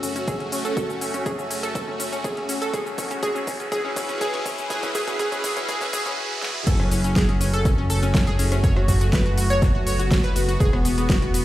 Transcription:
Already playing: F#1 A3 C#4 F#4 E6, riser
0.03 C#4, open hi-hat, cabasa
0.16 C#4, closed hi-hat, cabasa
0.28 G#4, kick, closed hi-hat, cabasa
0.40 C#4, closed hi-hat
0.52 C#4, open hi-hat, cabasa
0.65 A4, closed hi-hat, cabasa
0.77 A4, kick, closed hi-hat, cabasa
0.90 C#4, cabasa
1.01 C#4, open hi-hat, cabasa
1.14 C#4, closed hi-hat, cabasa
1.26 G#4, kick, closed hi-hat, cabasa
1.39 C#4, cabasa
1.51 C#4, open hi-hat, cabasa
1.63 A4, closed hi-hat, cabasa
1.75 A4, kick, closed hi-hat, cabasa
1.88 C#4
2.00 C#4, open hi-hat, cabasa
2.13 C#4, closed hi-hat, cabasa
2.24 G#4, kick, closed hi-hat, cabasa
2.37 C#4, closed hi-hat
2.49 C#4, open hi-hat, cabasa
2.62 A4, closed hi-hat, cabasa
2.73 E1 E3 E4 G#4 B4, kick, closed hi-hat, cabasa
2.86 C#4, cabasa
2.98 C#4, kick, open hi-hat, cabasa
3.11 C#4, closed hi-hat, cabasa
3.23 G#4, kick, closed hi-hat, cabasa
3.35 C#4, cabasa
3.47 C#4, kick, open hi-hat, cabasa
3.60 C#4, closed hi-hat, cabasa
3.72 G#4, kick, closed hi-hat, cabasa
3.85 C#4
3.96 C#4, kick, open hi-hat, cabasa
4.09 C#4, closed hi-hat, cabasa
4.21 G#4, kick, closed hi-hat, cabasa
4.34 C#4, closed hi-hat
4.46 C#4, kick, open hi-hat, cabasa
4.58 C#4, closed hi-hat, cabasa
4.70 G#4, kick, closed hi-hat, cabasa
4.83 C#4, kick, closed hi-hat, cabasa
4.95 G#4, kick, open hi-hat, cabasa
5.07 C#4, kick, closed hi-hat, cabasa
5.19 G#4, kick, closed hi-hat, cabasa
5.32 C#4, kick, closed hi-hat, cabasa
5.44 G#4, kick, open hi-hat, cabasa
5.57 C#4, kick, closed hi-hat, cabasa
5.68 G#4, kick, closed hi-hat, cabasa
5.81 C#4, kick, open hi-hat, cabasa
5.93 G#4, kick, open hi-hat, cabasa
6.06 C#4, kick, closed hi-hat, cabasa
6.42 snare
6.67 F#1 A3 C#4 F#4 A4, kick, closed hi-hat, crash, cabasa
6.80 C#4, cross-stick
6.91 C#4, open hi-hat, cabasa
7.04 C#4, closed hi-hat, cabasa
7.16 G#4, kick, snare, closed hi-hat, cabasa
7.29 C#4, closed hi-hat
7.41 C#4, open hi-hat, cabasa
7.53 A4, closed hi-hat, cabasa
7.65 C#4, kick, closed hi-hat, cabasa
7.78 C#4
7.90 A4, open hi-hat, cabasa
8.03 C#4, closed hi-hat, cabasa
8.14 C#4, kick, snare, closed hi-hat, cabasa
8.27 G#4, closed hi-hat
8.39 C#4, open hi-hat, cabasa
8.52 C#4, cross-stick, closed hi-hat, cabasa
8.64 B3 C#5, kick, closed hi-hat, cabasa
8.77 F#4, cross-stick
8.88 F#4, kick, open hi-hat, cabasa
9.01 F#4, closed hi-hat, cabasa
9.13 B4, kick, snare, closed hi-hat, cabasa
9.26 F#4, closed hi-hat
9.37 F#4, open hi-hat, cabasa
9.50 C#5, closed hi-hat, cabasa
9.62 F#4, kick, snare, closed hi-hat, cabasa
9.75 F#4
9.87 C#5, open hi-hat, cabasa
9.99 F#4, closed hi-hat, cabasa
10.11 F#4, kick, snare, closed hi-hat, cabasa
10.24 B4, closed hi-hat
10.36 F#4, open hi-hat, cabasa
10.49 F#4, closed hi-hat, cabasa
10.60 E1 E3 E4 G#4 B4, kick, closed hi-hat, cabasa
10.73 B3, cross-stick
10.85 B3, open hi-hat, cabasa
10.98 B3, closed hi-hat, cabasa
11.09 F#4, kick, snare, closed hi-hat, cabasa
11.22 B3, closed hi-hat
11.34 B3, open hi-hat, cabasa

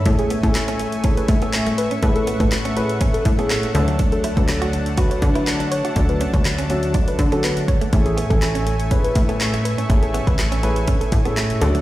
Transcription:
0.05 A2 A3 C#4 E4 G#4 A4 E5 G#5 C#6, kick, closed hi-hat
0.19 G#4, muted clean electric guitar stroke, closed hi-hat
0.30 B3, closed hi-hat
0.43 A2 A3 C#4 E4 A4 G#5, kick, closed hi-hat
0.55 muted clean electric guitar stroke, snare, clap, closed hi-hat
0.68 C#4, closed hi-hat
0.79 A3, closed hi-hat
0.92 closed hi-hat
1.04 A3 C#4 E4 G#4 A4, kick, closed hi-hat
1.17 B4, muted clean electric guitar stroke, closed hi-hat
1.28 A2, kick, closed hi-hat
1.42 B3 A4, closed hi-hat
1.53 snare, clap, closed hi-hat
1.67 A3, closed hi-hat
1.78 B4, muted clean electric guitar stroke, closed hi-hat
1.91 C#4, closed hi-hat
2.02 A2 A3 C#4 E4 G#4 B4 F#5, kick, closed hi-hat
2.16 A4, muted clean electric guitar stroke, closed hi-hat
2.27 B3, closed hi-hat
2.40 A2 B4, kick, closed hi-hat
2.52 muted clean electric guitar stroke, snare, clap, closed hi-hat
2.65 C#4, closed hi-hat
2.76 A3 C#4 E4 G#4 B4, closed hi-hat
2.89 closed hi-hat
3.01 C#4, kick, closed hi-hat
3.14 A4, muted clean electric guitar stroke, closed hi-hat
3.25 A2, kick, closed hi-hat
3.38 A3 B3 C#4 E4 G#4 A4, closed hi-hat
3.50 A3, snare, clap, closed hi-hat
3.63 closed hi-hat
3.74 D2 F#3 A3 D4 F#4 A4 F#5 A5, muted clean electric guitar stroke, closed hi-hat
3.88 A3, closed hi-hat
3.99 D4, kick, closed hi-hat
4.12 A4, muted clean electric guitar stroke, closed hi-hat
4.24 E4, closed hi-hat
4.37 D2 F#3 A3 D4 F#4 A4 B4, kick, closed hi-hat
4.48 muted clean electric guitar stroke, snare, clap, closed hi-hat
4.62 F#4, closed hi-hat
4.73 D4, closed hi-hat
4.86 closed hi-hat
4.97 F#3 A3 D4 F#4 B4, kick, closed hi-hat
5.11 C#5, muted clean electric guitar stroke, closed hi-hat
5.22 D3, kick, closed hi-hat
5.35 E4 B4, closed hi-hat
5.47 snare, clap, closed hi-hat
5.60 D4, closed hi-hat
5.71 C#5, muted clean electric guitar stroke, closed hi-hat
5.85 F#4, closed hi-hat
5.96 D2 F#3 A3 D4 F#4 A4, kick, closed hi-hat
6.09 B4, muted clean electric guitar stroke, closed hi-hat
6.21 C#4, closed hi-hat
6.34 D2 C#5, kick, closed hi-hat
6.45 muted clean electric guitar stroke, snare, clap, closed hi-hat
6.58 C#4, closed hi-hat
6.70 F#3 A3 C#4 D4 F#4 A4, closed hi-hat
6.83 closed hi-hat
6.94 D4, kick, closed hi-hat
7.08 B4, muted clean electric guitar stroke, closed hi-hat
7.19 D3, kick, closed hi-hat
7.32 F#3 A3 C#4 D4 F#4 A4, closed hi-hat
7.44 B3 B4, snare, clap, closed hi-hat
7.57 closed hi-hat
7.68 C#5, muted clean electric guitar stroke, kick, closed hi-hat
7.81 A3, closed hi-hat
7.93 A1 A3 C#4 E4 G#4 A4 E5 G#5 C#6, kick, closed hi-hat
8.06 G#4, muted clean electric guitar stroke, closed hi-hat
8.17 B3, closed hi-hat
8.30 A1 A3 C#4 E4 A4 G#5, kick, closed hi-hat
8.42 muted clean electric guitar stroke, snare, clap, closed hi-hat
8.55 C#4, closed hi-hat
8.67 A3, closed hi-hat
8.80 closed hi-hat
8.91 A3 C#4 E4 G#4 B4, kick, closed hi-hat
9.04 B4, muted clean electric guitar stroke, closed hi-hat
9.15 A2, kick, closed hi-hat
9.29 B3 A4, closed hi-hat
9.41 snare, clap, closed hi-hat
9.54 A3, closed hi-hat
9.65 B4, muted clean electric guitar stroke, closed hi-hat
9.78 C#4, closed hi-hat
9.89 A1 A3 C#4 E4 G#4 A4 G#5, kick, closed hi-hat
10.03 A4, muted clean electric guitar stroke, closed hi-hat
10.14 B3, closed hi-hat
10.27 A1 B4, kick, closed hi-hat
10.39 muted clean electric guitar stroke, snare, clap, closed hi-hat
10.52 C#4, closed hi-hat
10.63 A3 C#4 E4 G#4 B4, closed hi-hat
10.76 closed hi-hat
10.88 C#4, kick, closed hi-hat
11.01 A4, muted clean electric guitar stroke, closed hi-hat
11.12 A2, kick, closed hi-hat
11.25 A3 B3 C#4 E4 G#4 A4, closed hi-hat
11.37 A3, snare, clap, closed hi-hat
11.50 closed hi-hat
11.61 D2 F#3 A3 D4 F#4 A4 D5 F#5, muted clean electric guitar stroke, closed hi-hat
11.75 A3, closed hi-hat

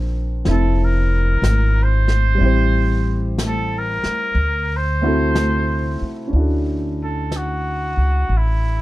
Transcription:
Already playing: A#1 A#3 C4 D4 F4 C5
0.45 F1 C4 E4, brush sweep, snare
0.51 A4
0.85 A#4
1.42 G#1, brush sweep, snare, hi-hat pedal
1.83 C5
2.08 snare
2.35 G3 C4
2.41 A1 E4 G4, brush sweep
2.46 C5
3.38 brush sweep, snare, hi-hat pedal
3.45 A4
3.79 A#4
4.03 muted upright bass stroke, snare
4.35 D2, brush sweep
4.76 C5
5.02 A3 C4 E4 F#4 A4
5.35 brush sweep, snare, hi-hat pedal
6.02 muted upright bass stroke
6.28 C#4 D4
6.33 D2 E4 F#4, brush sweep
6.39 A4
7.03 A4
7.32 brush sweep, snare, hi-hat pedal
7.37 F#4
7.97 C#2
8.29 A1, brush sweep
8.37 E4

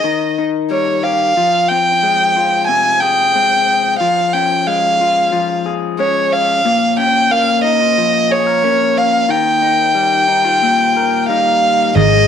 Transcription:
Already playing: D#5
0.04 D#3
0.38 D#4
0.71 G3 C#5
1.03 G4 F5
1.37 F3
1.68 C4 G5
2.03 G#3
2.37 F4
2.67 C3 G#5
3.00 G#4 G5
3.35 G#3 C4
3.99 F3 F5
4.33 C#4 G5
4.67 G#3 F5
5.01 F4
5.32 F3
5.66 G#4
5.99 G#3 C#4 C#5
6.32 F5
6.65 A#2
6.98 C#4 G5
7.31 A#3 F5
7.64 D#4 D#5
7.81 F4
7.98 F3
8.30 G#4 C#5
8.46 A#4
8.63 A#3 C#4
8.98 F5
9.29 D#3 G5
9.62 D#4
9.95 G3
10.28 D#4
10.45 F4
10.62 A#2
10.96 A#4
11.29 G3 D#4 F5
11.95 G#1 G#2 D#3 D#4 G#4 D#5

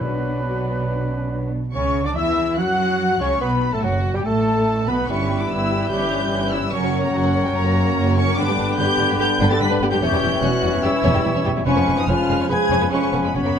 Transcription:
Already playing: F#4
0.01 B1 B2 F#3 B3 D4 B4 D5
0.46 F#4
0.89 D4
1.09 C#4
1.32 D4
1.73 C#2 C#3 C#4 C#5 C#6
2.04 D3 D4 D5 D6
2.15 E2 E3 E4 E5 E6
2.57 F#2 F#3 F#4 F#5 F#6
3.21 C#2 C#3 C#4 C#5 C#6
3.41 B1 B2 B3 B4 B5
3.72 A2 A3 A4 A5
3.82 F#1 F#2 F#3 F#4 F#5
4.14 G2 G3 G4 G5
4.24 A1 A2 A3 A4 A5
4.87 B1 B2 B3 B4 B5
5.08 G1 G2 E3 G3 B3 C#4 E4 G4 B4 E5 C#6
5.19 E4 G4
5.27 G4 B4
5.39 D4 E4 G4 D6
5.48 G1 G2 E4 G4 B4 E6
5.61 E4 G4
5.71 G4 B4
5.80 E4 G4
5.89 G1 G2 C#4 G4 C#5 G6
6.01 E4 B4
6.11 C#4 C#5
6.21 E4 B4
6.31 G1 G2 C#4 C#5
6.42 E4 B4
6.52 C#4 E4 C#5 E6
6.64 E4 B4
6.72 F#1 F#2 F#3 C#4 A#4 C#5 F#5 C#6
6.84 F#4 A#4
6.96 A#4 C#5
7.04 A#3 F#4 A#4 A#5
7.14 F#1 F#2 F#3 A#4 C#5 F#5
7.25 F#4 A#4
7.35 A#4 C#5
7.44 G3 F#4 A#4 G5
7.54 F#1 F#2 A#3 A#4 C#5 A#5
7.65 F#4 A#4
7.75 A#4 C#5
7.87 F#4 A#4
7.95 F#1 F#2 A#4 C#5
8.07 F#4 A#4
8.16 C#4 A#4 C#5 C#6
8.28 F#4 A#4
8.36 G1 G2 D3 G3 B3 D4 B4 G5 D6
8.48 G2 B3 G4
8.58 G1 G2 G3 D4
8.69 G2 B3 G4
8.77 G1 G2 G3 B3 G4 B4 G6
8.81 D4
8.98 G1 G2 G3 D4
9.10 G2 D4 B4
9.18 G1 G2 G3 B3 G4 G6
9.40 G1 G2 D4 B4
9.50 G2 B3 G4 A4 A6
9.59 G1 G2 G3 B3 D4 B4 B6
9.70 G2 D4 B4
9.80 G1 G2 B3 G4
9.91 G2 G3 D4 G4 G6
10.00 E1 E2 E3 G3 C#4 G4 C#5 E5 G6
10.12 E2 G3 G4
10.21 E1 E2 G3 E4
10.33 E2 G3 G4
10.40 E1 E2 C#4 F#4 C#5 F#6
10.63 E1 E2 G3 E4
10.73 E2 C#4 C#5
10.82 E1 E2 G3 C#4 E4 G4 E6
11.04 E1 E2 C#4 C#5
11.14 E2 G3 G4
11.25 E1 E2 G3 E4
11.34 E2 C#4 C#5
11.45 E1 E2 G3 G4
11.56 E2 G3 E4
11.65 F1 F2 F3 G#3 C#4 B4 C#5 G#5 C#6
11.76 F2 B3 B4
11.87 F1 F2 G#3 G#4
11.97 F2 B3 D#4 B4 D#6
12.07 F1 F2 F3 G#3 C#4 F4 B4 C#5 G#5 F6
12.29 F1 F2 G#3 G#4
12.40 F2 C#4 C#5
12.49 F1 F2 F3 G#3 B3 C#4 G#4 B4 G#5 G#6
12.70 F1 F2 C#4 C#5
12.81 F2 B3 B4
12.91 F1 F2 F3 G#3 C#4 G#4 B4 G#5 C#6
13.01 F2 C#4 C#5
13.13 F1 F2 B3 B4
13.23 F2 G#3 B3 G#4 B5
13.34 F#1 F#2 F#3 B3 C#4 C#5 F#5 B5
13.42 F#2 A#3 A#4
13.50 F#2

